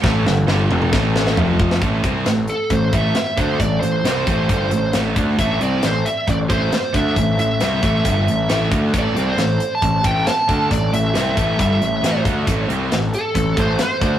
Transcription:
<<
  \new Staff \with { instrumentName = "Lead electric guitar" } { \time 4/4 \key g \mixolydian \tempo 4 = 135 r1 | \key a \minor r4. a'8 c''8 e''4 c''8 | d''8 c''4 c''4. r4 | e''8 d''8 c''8 e''8 d''8 c''4 e''8~ |
e''8 e''4 e''2 r8 | d''8. c''4 a''8. g''8 a''4 | d''8 e''4. e''4. r8 | r4. a'4 c''8 c''4 | }
  \new Staff \with { instrumentName = "Distorted electric guitar" } { \clef bass \time 4/4 \key g \mixolydian <a, e a>8 <g, d>8 <g, d g>8 <f, c f>8 <a, e a>4 <f, c f>4 | \key a \minor <a, e a>8 <c g c'>8 <a, e>8 r8 <a, e>8 <a, e a>8 r8 <d a d'>8 | <a, e>8 <a, e>8 <c g c'>8 <a, e a>8 <g, d g>8 <a, e>8 <a, e a>8 <d a d'>8 | <a, e a>8 <c g c'>8 <a, e>8 r8 <a, e>8 <a, e a>8 r8 <d a d'>8 |
<a, e>8 <a, e>8 <c g c'>8 <a, e a>8 <g, d g>8 <a, e>8 <a, e a>8 <d a d'>8 | <a, e a>8 <c g c'>8 <a, e>8 r8 <a, e>8 <a, e a>8 r8 <d a d'>8 | <a, e>8 <a, e>8 <c g c'>8 <a, e a>8 <g, d g>8 <a, e>8 <a, e a>8 <d a d'>8 | <a, e a>8 <c g c'>8 <a, e>8 r8 <a, e>8 <a, e a>8 r8 <d a d'>8 | }
  \new Staff \with { instrumentName = "Overdriven electric guitar" } { \clef bass \time 4/4 \key g \mixolydian <a, e a>8 <g, d>8 <g, d g>8 <f, c f>8 <a, e a>4 <f, c f>4 | \key a \minor <a, e a>8 <c g c'>8 <a, e>8 r8 <a, e>8 <a, e a>8 r8 <d a d'>8 | <a, e>8 <a, e>8 <c g c'>8 <a, e a>8 <g, d g>8 <a, e>8 <a, e a>8 <d a d'>8 | <a, e a>8 <c g c'>8 <a, e>8 r8 <a, e>8 <a, e a>8 r8 <d a d'>8 |
<a, e>8 <a, e>8 <c g c'>8 <a, e a>8 <g, d g>8 <a, e>8 <a, e a>8 <d a d'>8 | <a, e a>8 <c g c'>8 <a, e>8 r8 <a, e>8 <a, e a>8 r8 <d a d'>8 | <a, e>8 <a, e>8 <c g c'>8 <a, e a>8 <g, d g>8 <a, e>8 <a, e a>8 <d a d'>8 | <a, e a>8 <c g c'>8 <a, e>8 r8 <a, e>8 <a, e a>8 r8 <d a d'>8 | }
  \new Staff \with { instrumentName = "Picked electric bass" } { \clef bass \time 4/4 \key g \mixolydian a,,8 g,,8 g,,8 f,,8 a,,4 f,,4 | \key a \minor a,,8 c,8 a,,8 r8 a,,8 a,,8 r8 d,8 | a,,8 a,,8 c,8 a,,8 g,,8 a,,8 a,,8 d,8 | a,,8 c,8 a,,8 r8 a,,8 a,,8 r8 d,8 |
a,,8 a,,8 c,8 a,,8 g,,8 a,,8 a,,8 d,8 | a,,8 c,8 a,,8 r8 a,,8 a,,8 r8 d,8 | a,,8 a,,8 c,8 a,,8 g,,8 a,,8 a,,8 d,8 | a,,8 c,8 a,,8 r8 a,,8 a,,8 r8 d,8 | }
  \new DrumStaff \with { instrumentName = "Drums" } \drummode { \time 4/4 <bd sn>8 sn16 tommh16 sn8 toml16 toml16 <bd sn>8 sn16 sn16 tomfh8 bd16 sn16 | <hh bd>8 <hh bd>8 <hh sn>8 hh8 <hh bd>8 <hh bd>8 <hh sn>8 <hh bd>8 | <hh bd>8 hh8 <hh sn>8 <hh bd>8 <hh bd>8 hh8 <hh sn>8 <hh bd>8 | <hh bd>8 hh8 <hh sn>8 hh8 <hh bd>8 <hh bd>8 <hh sn>8 <hh bd>8 |
<hh bd>8 hh8 <hh sn>8 <hh bd>8 <hh bd>8 hh8 <hh sn>8 <hh bd>8 | <hh bd>8 hh8 <hh sn>8 hh8 <hh bd>8 <hh bd>8 <hh sn>8 <hh bd>8 | <hh bd>8 hh8 <hh sn>8 <hh bd>8 <hh bd>8 hh8 <hh sn>8 <hh bd>8 | <hh bd>8 hh8 <hh sn>8 hh8 <hh bd>8 <hh bd>8 <hh sn>8 <hh bd>8 | }
>>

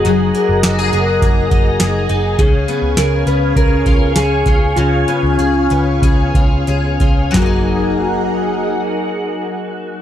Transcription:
<<
  \new Staff \with { instrumentName = "String machine" } { \time 4/4 \key fis \major \tempo 4 = 98 << { <dis'' fis'' ais''>1 | <cis'' eis'' gis''>1~ | <cis'' eis'' gis''>1 | <dis' gis' ais' fis''>1 | } \\ { gis'1~ | gis'1~ | gis'1 | r1 | } >> }
  \new Staff \with { instrumentName = "Electric slide guitar" } { \time 4/4 \key fis \major gis'4 r2. | gis'4 ais'8 b'8 ais'4 gis'4 | eis'2.~ eis'8 r8 | fis'1 | }
  \new Staff \with { instrumentName = "Twelve-string acoustic guitar" } { \time 4/4 \key fis \major <fis ais dis' gis'>8 ais8 fis'16 gis'16 ais8 gis'8 dis'8 gis'8 dis'8 | cis8 b8 gis'8 b8 gis'8 eis'8 gis'8 eis'8 | cis8 b8 gis'8 b8 gis'8 eis'8 gis'8 eis'8 | <fis ais dis' gis'>1 | }
  \new Staff \with { instrumentName = "Picked electric bass" } { \clef bass \time 4/4 \key fis \major fis,,8 r16 fis,,16 fis,,8 fis,,8 fis,,8 fis,,8 fis,,8 fis,,8 | cis,8 r16 cis,16 cis,8 cis,8 cis,8 cis,8 cis,8 cis,8 | cis,8 r16 cis,16 cis,8 cis,8 cis,8 cis,8 cis,8 cis,8 | fis,,1 | }
  \new DrumStaff \with { instrumentName = "Drums" } \drummode { \time 4/4 hh8 hh8 <hh sn>8 hh8 <hh bd>8 <hh bd>8 <hh sn>8 hh8 | <hh bd>8 hh8 <hh sn>8 hh8 <hh bd>8 <hh bd>8 <hh sn>8 <hh bd>8 | hh8 hh8 hh8 hh8 <hh bd>8 <hh bd>8 hh8 <hh bd>8 | <hc bd sn>4 r4 r4 r4 | }
>>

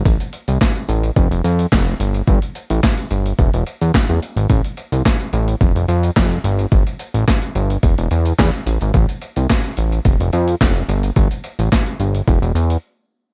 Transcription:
<<
  \new Staff \with { instrumentName = "Analog synth bass" } { \clef bass \time 4/4 \key a \minor \tempo 4 = 108 a,,16 r8 c,16 r8 a,,8 f,,16 f,,16 f,8 f,,8 g,,8 | g,,16 r8 a,,16 r8 g,,8 e,,16 e,,16 r16 e,16 r16 e,16 r16 gis,,16 | a,,16 r8 c,16 r8 a,,8 f,,16 f,,16 f,8 f,,8 g,,8 | g,,16 r8 a,,16 r8 g,,8 e,,16 e,,16 e,8 e,16 r16 a,,16 gis,,16 |
a,,16 r8 c,16 r8 a,,8 f,,16 f,,16 f,8 f,,8 g,,8 | g,,16 r8 a,,16 r8 g,,8 e,,16 e,,16 e,8 r4 | }
  \new DrumStaff \with { instrumentName = "Drums" } \drummode { \time 4/4 <hh bd>16 hh16 hh16 hh16 <hc hh bd sn>16 hh16 hh16 hh16 <hh bd>16 hh16 hh16 hh16 <hc hh bd sn>16 hh16 hh16 hh16 | <hh bd>16 hh16 hh16 hh16 <hc hh bd sn>16 hh16 hh16 hh16 <hh bd>16 hh16 hh16 hh16 <hc hh bd sn>16 hh16 hh16 hh16 | <hh bd>16 hh16 hh16 hh16 <hc hh bd sn>16 hh16 hh16 hh16 <hh bd>16 hh16 hh16 hh16 <hc hh bd sn>16 hh16 hh16 hh16 | <hh bd>16 hh16 hh16 hh16 <hc hh bd sn>16 hh16 hh16 hh16 <hh bd>16 hh16 hh16 hh16 <hc hh bd sn>16 hh16 hh16 hh16 |
<hh bd>16 hh16 hh16 hh16 <hc hh bd sn>16 hh16 hh16 hh16 <hh bd>16 hh16 hh16 hh16 <hc hh bd sn>16 hh16 hh16 hh16 | <hh bd>16 hh16 hh16 hh16 <hc hh bd sn>16 hh16 hh16 hh16 <hh bd>16 hh16 hh16 hh16 r4 | }
>>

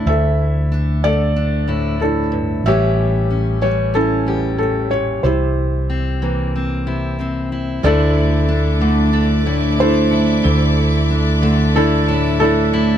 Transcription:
<<
  \new Staff \with { instrumentName = "String section" } { \time 4/4 \key c \mixolydian \tempo 4 = 92 r1 | r1 | r1 | <a' d'' e'' d'''>1~ |
<a' d'' e'' d'''>1 | }
  \new Staff \with { instrumentName = "Felt piano" } { \time 4/4 \key c \mixolydian << { e''4. d''4. a'4 | e''4. cis''8 a'4 a'8 cis''8 | c''2. r4 | d''2. c''4~ |
c''2 a'4 a'4 | } \\ { <d' e' a'>4. a'4. <d' e'>4 | <g' cis''>2 <cis' e'>2 | <e' g'>2. r4 | a'2. <e' a'>4~ |
<e' a'>2 <d' e'>4 <d' e'>4 | } >> }
  \new Staff \with { instrumentName = "Vibraphone" } { \time 4/4 \key c \mixolydian r1 | r1 | r1 | <e' a'>8 a4 d'8 a'8 a8 d'8 a8 |
<e' a'>8 a4 d'8 a'8 a8 d'8 a8 | }
  \new Staff \with { instrumentName = "Steel-string acoustic guitar" } { \time 4/4 \key c \mixolydian << { e'4 d'8 a8 d'8 e'4. | <e g cis' g'>4 cis'8 g8 cis'8 g'4. | r4 c'8 bes8 c'8 e'8 c'8 e'8 | <d a d' e'>4 d'8 a8 d'8 e'8 d'8 e'8~ |
e'4 d'8 a8 d'8 e'8 d'8 e'8 | } \\ { <d, d>4. d4 a,8 f,8 g,8 | a,4. e4 e,8 a,8 bes,8 | c4. e4 c4. | d,4. d4 a,4. |
d,4. d4 a,4. | } >> }
  \new Staff \with { instrumentName = "Fretless electric bass" } { \clef bass \time 4/4 \key c \mixolydian d,1 | a,,1 | c,1 | d,1 |
d,1 | }
>>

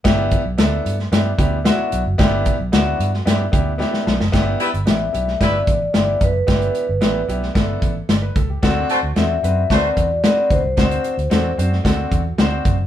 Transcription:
<<
  \new Staff \with { instrumentName = "Vibraphone" } { \time 4/4 \key g \major \tempo 4 = 112 r1 | r1 | r4 e''4 d''4 d''8 b'8~ | b'4. r2 r8 |
r4 e''4 d''4 d''8 c''8~ | c''4. r2 r8 | }
  \new Staff \with { instrumentName = "Horn section" } { \time 4/4 \key g \major r1 | r1 | r8 <g e' b'>16 r4 r16 <g e' b'>8 r4. | r1 |
r8 <a fis' c''>16 r4 r16 <a fis' c''>8 r4. | r1 | }
  \new Staff \with { instrumentName = "Grand piano" } { \time 4/4 \key g \major << { r1 | r2. d''8 a''8 | r1 | r2. d''16 b'16 a'16 g'16~ |
g'16 r2. r8. | r1 | } \\ { <b d' e' g'>8 r8 <b d' e' a'>8 r8 <b d' e' g'>8 <b d' e' g'>8 <b d' e' fis'>8 r8 | <b d' e' g'>8 r8 <b d' e' fis'>8 r8 <b d' e' g'>8 <b d' e' g'>8 <b d' e' g'>8 r8 | <b d' e' g'>8 r8 <b d' e' g'>8 <b d' e' g'>8 <b d' e' g'>8 r8 <b d' e' g'>8 r8 | <b d' e' g'>8 r8 <b d' e' g'>8 <b d' e' g'>8 <b d' e' a'>8 r4. |
<c' d' fis' a'>8 r8 <c' d' fis' a'>8 <c' d' fis' b'>8 <c' d' fis' b'>8 r8 <c' d' fis' b'>8 r8 | <c' d' fis' c''>8 r8 <c' d' fis' a'>8 <c' d' fis' c''>8 <c' d' fis' a'>8 r8 <c' d' fis' c''>8 r8 | } >> }
  \new Staff \with { instrumentName = "Fingered electric bass" } { \clef bass \time 4/4 \key g \major g,,8. b,,16 d,8 g,8 g,8 d,8. r16 b,,16 fis,,16 | g,,8. b,,16 d,8 g,8 g,8 d,8. r16 b,,16 fis,,16 | g,,8 r16 g,,16 a,,8 b,,8 g,,8 a,,8 g,,8 fis,,8 | g,,8 r16 g,,16 a,,8 b,,8 g,,8 a,,8 g,,8 cis,8 |
d,8 r16 d,16 e,8 fis,8 d,8 e,8. r16 d,16 c,16 | d,8 r16 d,16 e,8 fis,8 d,8 e,8 d,8 fis,,8 | }
  \new DrumStaff \with { instrumentName = "Drums" } \drummode { \time 4/4 <hh bd sn>8 <hh bd>8 <hh sn>8 hh16 sn16 <hh sn>8 <hh bd>8 <hh sn>8 hh8 | <hh bd sn>8 <hh bd>8 <hh sn>8 hh16 sn16 <hh sn>8 <hh bd>8 sn16 sn16 sn16 sn16 | <hh bd sn>8 hh16 hh16 <hh sn>8 hh16 sn16 <hh bd sn>8 <hh bd>8 <hh sn>8 <hh bd>8 | <hh bd sn>16 hh16 hh8 <hh sn>8 hh16 sn16 <hh bd sn>8 <hh bd>8 <hh sn>8 <hh bd>8 |
<hh bd sn>8 hh8 <hh sn>8 hh8 <hh bd sn>8 <hh bd>8 <hh sn>8 <hh bd>8 | <hh bd sn>16 hh16 hh16 hh16 <hh sn>8 hh16 sn16 <hh bd sn>8 <hh bd>8 <hh sn>8 <hh bd>8 | }
>>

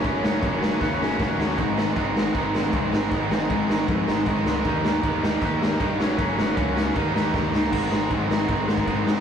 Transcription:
<<
  \new Staff \with { instrumentName = "Overdriven electric guitar" } { \clef bass \time 4/4 \key aes \major \tempo 4 = 156 <ges, des ges bes des'>8 <ges, des ges bes des'>8 <ges, des ges bes des'>8 <ges, des ges bes des'>8 <ges, des ges bes des'>8 <ges, des ges bes des'>8 <ges, des ges bes des'>8 <ges, des ges bes des'>8 | <aes, ees aes c' ees'>8 <aes, ees aes c' ees'>8 <aes, ees aes c' ees'>8 <aes, ees aes c' ees'>8 <aes, ees aes c' ees'>8 <aes, ees aes c' ees'>8 <aes, ees aes c' ees'>8 <aes, ees aes c' ees'>8 | <aes, ees aes c' ees'>8 <aes, ees aes c' ees'>8 <aes, ees aes c' ees'>8 <aes, ees aes c' ees'>8 <aes, ees aes c' ees'>8 <aes, ees aes c' ees'>8 <aes, ees aes c' ees'>8 <aes, ees aes c' ees'>8 | <ees g bes ees'>8 <ees g bes ees'>8 <ees g bes ees'>8 <ees g bes ees'>8 <ees g bes ees'>8 <ees g bes ees'>8 <ees g bes ees'>8 <ges, des ges bes des'>8 |
<ges, des ges bes des'>8 <ges, des ges bes des'>8 <ges, des ges bes des'>8 <ges, des ges bes des'>8 <ees g bes ees'>8 <ees g bes ees'>8 <ees g bes ees'>8 <ees g bes ees'>8 | <aes, ees aes c' ees'>8 <aes, ees aes c' ees'>8 <aes, ees aes c' ees'>8 <aes, ees aes c' ees'>8 <aes, ees aes c' ees'>8 <aes, ees aes c' ees'>8 <aes, ees aes c' ees'>8 <aes, ees aes c' ees'>8 | }
  \new Staff \with { instrumentName = "Overdriven electric guitar" } { \clef bass \time 4/4 \key aes \major <ges, des ges>8 <ges, des ges>8 <ges, des ges>8 <ges, des ges>8 <ges, des ges>8 <ges, des ges>8 <ges, des ges>8 <ges, des ges>8 | <aes, ees aes>8 <aes, ees aes>8 <aes, ees aes>8 <aes, ees aes>8 <aes, ees aes>8 <aes, ees aes>8 <aes, ees aes>8 <aes, ees aes>8 | <aes, ees aes>8 <aes, ees aes>8 <aes, ees aes>8 <aes, ees aes>8 <aes, ees aes>8 <aes, ees aes>8 <aes, ees aes>8 <aes, ees aes>8 | <ees bes ees'>8 <ees bes ees'>8 <ees bes ees'>8 <ees bes ees'>8 <ees bes ees'>8 <ees bes ees'>8 <ees bes ees'>8 <ges, des ges>8 |
<ges, des ges>8 <ges, des ges>8 <ges, des ges>8 <ges, des ges>8 <ees bes ees'>8 <ees bes ees'>8 <ees bes ees'>8 <ees bes ees'>8 | <aes, ees aes>8 <aes, ees aes>8 <aes, ees aes>8 <aes, ees aes>8 <aes, ees aes>8 <aes, ees aes>8 <aes, ees aes>8 <aes, ees aes>8 | }
  \new Staff \with { instrumentName = "Picked electric bass" } { \clef bass \time 4/4 \key aes \major ges,,8 ges,,8 ges,,4 ees,8 ges,,8 ges,,8 ees,8 | aes,,4 aes,,4 aes,,8 aes,,8 c,8 aes,,8 | aes,,8 aes,,8 aes,,4 f,8 aes,,8 aes,,8 des,8 | ees,4 ees,4 ees,8 ees,8 g,8 ges,,8 |
ges,,8 ges,,8 des,4 ees,8 ees,8 ees,8 des,8 | aes,,8 aes,,8 aes,,8 aes,,8 aes,,4 aes,,8 aes,8 | }
  \new DrumStaff \with { instrumentName = "Drums" } \drummode { \time 4/4 <cymc bd>8 sn8 <cymc bd>8 sn8 <bd sn>8 sn8 <bd sn>8 sn8 | <cymc bd>8 sn8 <cymc bd>8 sn8 <cymc bd>8 sn8 <cymc bd>8 sn8 | <cymc bd>8 sn8 <cymc bd>8 sn8 <cymc bd>8 sn8 <cymc bd>8 sn8 | <cymc bd>8 sn8 <cymc bd>8 sn8 <cymc bd>8 sn8 <cymc bd>8 sn8 |
<cymc bd>8 sn8 <cymc bd>8 sn8 <cymc bd>8 sn8 <bd sn>8 sn8 | <cymc bd>8 sn8 <cymc bd>8 sn8 <cymc bd>8 sn16 bd16 <cymc bd>8 sn8 | }
>>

